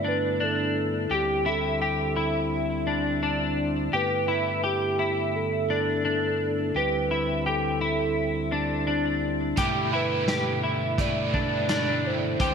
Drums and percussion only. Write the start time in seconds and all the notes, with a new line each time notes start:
9.57 kick, closed hi-hat
10.28 snare, closed hi-hat
10.98 kick, closed hi-hat
11.34 kick
11.69 snare, closed hi-hat
12.40 kick, closed hi-hat